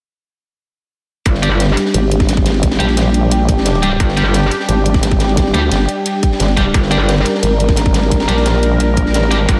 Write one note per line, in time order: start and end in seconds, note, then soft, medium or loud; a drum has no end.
1.26 1.76 G1 loud
1.26 9.60 G3 medium
1.26 9.60 D4 medium
1.26 6.72 G4 medium
1.26 kick loud
1.26 closed hi-hat loud
1.26 ride medium
1.34 snare medium
1.43 1.48 G3 medium
1.43 1.48 D4 medium
1.43 1.48 G4 loud
1.43 closed hi-hat medium
1.43 ride medium
1.60 snare loud
1.60 closed hi-hat medium
1.60 ride medium
1.69 ride soft
1.77 snare medium
1.77 closed hi-hat medium
1.77 ride medium
1.85 snare soft
1.94 2.79 G#1 loud
1.94 closed hi-hat medium
1.94 ride medium
2.11 closed hi-hat medium
2.11 ride medium
2.20 kick loud
2.20 snare soft
2.29 snare loud
2.29 closed hi-hat loud
2.29 ride medium
2.37 kick loud
2.46 snare loud
2.46 closed hi-hat medium
2.46 ride medium
2.54 ride soft
2.63 kick loud
2.63 snare soft
2.63 closed hi-hat medium
2.63 ride medium
2.71 snare medium
2.71 ride medium
2.80 3.99 A#1 medium
2.80 2.85 G3 medium
2.80 2.85 D4 medium
2.80 2.85 G4 loud
2.80 closed hi-hat medium
2.80 ride soft
2.88 snare soft
2.88 ride medium
2.97 snare loud
2.97 closed hi-hat medium
2.97 ride medium
3.14 closed hi-hat medium
3.14 ride medium
3.31 closed hi-hat medium
3.31 ride medium
3.49 kick loud
3.49 closed hi-hat medium
3.49 ride medium
3.57 snare soft
3.65 snare loud
3.65 closed hi-hat loud
3.65 ride medium
3.75 ride soft
3.83 3.88 G3 medium
3.83 3.88 D4 medium
3.83 3.88 G4 loud
3.83 closed hi-hat medium
3.83 ride medium
4.00 4.50 G1 medium
4.00 kick loud
4.00 closed hi-hat medium
4.00 ride medium
4.09 snare medium
4.17 4.22 G3 medium
4.17 4.22 D4 medium
4.17 4.22 G4 loud
4.17 closed hi-hat medium
4.17 ride medium
4.34 snare loud
4.34 closed hi-hat medium
4.34 ride medium
4.43 ride soft
4.51 snare soft
4.51 closed hi-hat medium
4.51 ride medium
4.60 snare soft
4.69 5.53 G#1 loud
4.69 closed hi-hat medium
4.69 ride medium
4.85 closed hi-hat medium
4.85 ride medium
4.94 kick loud
4.94 snare medium
5.03 snare loud
5.03 closed hi-hat loud
5.03 ride medium
5.11 kick loud
5.20 snare loud
5.20 closed hi-hat medium
5.20 ride medium
5.29 ride soft
5.37 kick loud
5.37 snare medium
5.37 closed hi-hat medium
5.37 ride medium
5.46 snare soft
5.54 5.70 D2 loud
5.54 5.59 G3 medium
5.54 5.59 D4 medium
5.54 5.59 G4 loud
5.54 closed hi-hat medium
5.54 ride medium
5.71 5.87 G1 loud
5.71 snare loud
5.71 closed hi-hat medium
5.71 ride medium
5.88 closed hi-hat medium
5.88 ride medium
6.06 closed hi-hat medium
6.06 ride medium
6.23 kick loud
6.23 closed hi-hat medium
6.23 ride medium
6.32 snare soft
6.40 6.73 G1 loud
6.40 snare loud
6.40 closed hi-hat medium
6.40 ride medium
6.48 ride soft
6.57 6.62 G3 medium
6.57 6.62 D4 medium
6.57 6.62 G4 loud
6.57 kick medium
6.57 closed hi-hat medium
6.57 ride medium
6.74 7.24 G1 loud
6.74 9.60 A#4 medium
6.74 kick loud
6.74 closed hi-hat medium
6.74 ride medium
6.83 snare medium
6.91 6.97 G3 medium
6.91 6.97 D4 medium
6.91 6.97 G4 loud
6.91 closed hi-hat medium
6.91 ride medium
7.09 snare loud
7.09 closed hi-hat medium
7.09 ride medium
7.18 ride soft
7.25 snare medium
7.25 closed hi-hat medium
7.25 ride medium
7.35 snare soft
7.43 8.27 G#1 loud
7.43 closed hi-hat medium
7.43 ride medium
7.60 closed hi-hat medium
7.60 ride medium
7.68 kick loud
7.68 snare soft
7.76 snare loud
7.76 closed hi-hat medium
7.76 ride medium
7.86 kick loud
7.94 snare loud
7.94 closed hi-hat medium
7.94 ride medium
8.03 ride soft
8.12 kick loud
8.12 snare soft
8.12 closed hi-hat medium
8.12 ride medium
8.20 snare medium
8.20 ride medium
8.28 9.13 A#1 medium
8.28 8.34 G3 medium
8.28 8.34 D4 medium
8.28 8.34 G4 medium
8.28 closed hi-hat medium
8.28 ride soft
8.37 snare soft
8.37 ride medium
8.46 snare loud
8.46 closed hi-hat medium
8.46 ride medium
8.63 closed hi-hat medium
8.63 ride medium
8.80 closed hi-hat medium
8.80 ride medium
8.97 kick loud
8.97 closed hi-hat medium
8.97 ride medium
9.06 snare soft
9.13 9.36 A1 medium
9.13 snare loud
9.13 closed hi-hat medium
9.13 ride medium
9.23 ride soft
9.31 9.37 G3 medium
9.31 9.37 D4 medium
9.31 9.37 G4 loud
9.31 closed hi-hat medium
9.31 ride medium
9.36 9.47 G#1 medium
9.49 9.60 G1 loud
9.49 kick loud
9.49 closed hi-hat medium
9.49 ride medium